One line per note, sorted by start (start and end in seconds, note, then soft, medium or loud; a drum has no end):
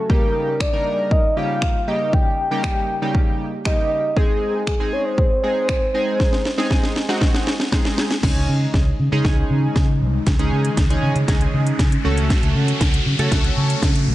0.00 0.11 A4 medium
0.09 0.53 C#3 medium
0.09 0.53 G3 medium
0.09 0.53 A#3 medium
0.09 0.54 D#4 medium
0.09 0.54 G4 medium
0.09 0.62 A#4 loud
0.09 kick loud
0.60 1.11 D5 loud
0.60 finger snap loud
0.60 kick loud
0.73 1.17 C#3 medium
0.73 1.17 G3 medium
0.73 1.17 A#3 medium
0.73 1.17 D#4 medium
0.73 1.17 A#4 medium
1.11 1.38 D#5 loud
1.11 kick loud
1.37 1.72 C#3 medium
1.37 1.72 G3 medium
1.37 1.72 A#3 medium
1.37 1.72 D#4 medium
1.37 1.72 G4 medium
1.37 1.89 F5 loud
1.62 finger snap loud
1.62 kick loud
1.87 2.31 C#3 medium
1.87 2.31 G3 medium
1.87 2.31 A#3 medium
1.87 2.31 D#4 medium
1.87 2.31 G4 medium
1.87 2.15 D#5 loud
2.13 2.63 G5 loud
2.13 kick loud
2.51 2.86 C#3 medium
2.51 2.86 G3 medium
2.51 2.86 A#3 medium
2.51 2.86 D#4 medium
2.51 2.86 G4 medium
2.64 3.36 G5 loud
2.64 finger snap loud
2.64 kick loud
3.02 3.46 C#3 medium
3.02 3.46 G3 medium
3.02 3.46 A#3 medium
3.02 3.46 D#4 medium
3.02 3.46 G4 medium
3.15 kick loud
3.65 4.01 C#3 medium
3.65 4.01 G3 medium
3.65 4.01 A#3 medium
3.65 4.01 D#4 medium
3.65 4.01 G4 medium
3.65 4.18 D#5 loud
3.65 finger snap loud
3.65 kick loud
4.16 4.60 G#3 medium
4.16 4.60 C4 medium
4.16 4.60 D#4 medium
4.16 4.67 G#4 loud
4.16 4.60 G#4 medium
4.16 kick loud
4.67 4.94 G#4 loud
4.67 finger snap loud
4.67 kick loud
4.80 5.24 G#3 medium
4.80 5.24 C4 medium
4.80 5.24 D#4 medium
4.80 5.24 G#4 medium
4.93 5.07 C#5 loud
5.05 7.72 C5 loud
5.18 kick loud
5.43 5.78 G#3 medium
5.43 5.79 C4 medium
5.43 5.79 D#4 medium
5.43 5.79 G#4 medium
5.69 finger snap loud
5.69 kick loud
5.94 6.38 G#3 medium
5.94 6.38 C4 medium
5.94 6.38 D#4 medium
5.94 6.38 G#4 medium
6.20 kick loud
6.20 snare medium
6.33 snare soft
6.45 snare medium
6.58 6.93 G#3 medium
6.58 6.93 C4 medium
6.58 6.93 D#4 medium
6.58 6.93 G#4 loud
6.58 snare medium
6.71 kick loud
6.71 snare medium
6.83 snare medium
6.96 snare medium
7.09 7.52 G#3 loud
7.09 7.53 C4 medium
7.09 7.53 D#4 medium
7.09 7.53 F#4 loud
7.09 snare medium
7.21 kick loud
7.21 snare medium
7.34 snare medium
7.47 snare medium
7.60 snare medium
7.72 8.07 G#3 medium
7.72 8.07 C4 medium
7.72 8.07 D#4 medium
7.72 8.08 G#4 medium
7.72 kick loud
7.72 snare medium
7.85 snare medium
7.98 snare loud
8.11 snare medium
8.23 8.32 C#2 loud
8.23 14.15 C#3 medium
8.23 12.01 D#3 medium
8.23 12.01 G#3 medium
8.23 8.84 G#3 medium
8.23 8.84 C#4 medium
8.23 10.24 D#4 medium
8.23 8.85 D#4 medium
8.23 8.85 G#4 medium
8.23 kick loud
8.23 snare medium
8.23 crash medium
8.23 riser medium
8.36 8.44 C#2 medium
8.49 8.65 C#3 loud
8.74 8.90 C#2 loud
8.74 kick loud
8.74 snare medium
9.00 9.08 C#3 loud
9.12 9.21 C#3 loud
9.12 9.82 G#3 loud
9.12 9.82 C#4 medium
9.12 9.82 D#4 medium
9.12 9.82 G#4 loud
9.25 9.41 C#2 medium
9.25 kick loud
9.25 snare medium
9.50 9.67 C#3 medium
9.76 10.03 C#3 loud
9.76 kick loud
9.76 snare medium
10.01 10.18 C2 loud
10.27 10.35 C#2 loud
10.27 12.03 C#4 medium
10.27 kick loud
10.27 snare medium
10.27 closed hi-hat medium
10.39 10.48 C#2 loud
10.39 10.74 G#3 medium
10.39 10.74 C#4 medium
10.39 10.74 D#4 medium
10.39 10.74 G#4 loud
10.39 closed hi-hat soft
10.52 10.69 C#3 medium
10.65 closed hi-hat medium
10.77 10.94 C#2 loud
10.77 kick loud
10.77 snare medium
10.77 closed hi-hat medium
10.90 11.16 G#3 medium
10.90 11.16 C#4 medium
10.90 11.17 D#4 medium
10.90 11.17 G#4 loud
10.90 closed hi-hat medium
11.03 11.11 C#3 loud
11.16 11.24 C#3 loud
11.16 closed hi-hat medium
11.28 11.45 C#2 loud
11.28 11.81 G#3 medium
11.28 11.81 C#4 medium
11.28 11.81 D#4 medium
11.28 11.81 G#4 medium
11.28 kick loud
11.28 snare medium
11.28 closed hi-hat medium
11.41 closed hi-hat medium
11.54 11.70 C#3 loud
11.67 closed hi-hat medium
11.79 11.96 C#3 medium
11.79 kick loud
11.79 snare medium
11.79 closed hi-hat medium
11.92 closed hi-hat medium
12.04 12.29 C#2 medium
12.04 14.15 F#3 medium
12.04 12.86 A3 medium
12.04 14.15 A3 medium
12.04 12.86 C#4 medium
12.04 12.86 F#4 medium
12.04 14.06 F#4 medium
12.04 12.86 A4 loud
12.18 closed hi-hat soft
12.30 kick loud
12.30 snare medium
12.30 closed hi-hat medium
12.43 12.51 C#2 medium
12.43 closed hi-hat soft
12.55 12.72 C#3 loud
12.68 closed hi-hat medium
12.81 12.97 C#2 loud
12.81 kick loud
12.81 snare medium
12.81 closed hi-hat medium
12.94 closed hi-hat medium
13.06 13.15 C#3 loud
13.19 13.27 C#3 loud
13.19 13.89 A3 loud
13.19 13.89 C#4 medium
13.19 13.89 F#4 medium
13.19 13.89 A4 loud
13.19 closed hi-hat medium
13.32 13.48 C#2 loud
13.32 kick loud
13.32 snare medium
13.32 closed hi-hat medium
13.44 closed hi-hat medium
13.57 13.74 C#3 loud
13.70 closed hi-hat soft
13.82 14.09 C#3 medium
13.82 kick loud
13.82 snare medium
13.82 closed hi-hat medium
13.96 closed hi-hat medium
14.08 14.15 C2 medium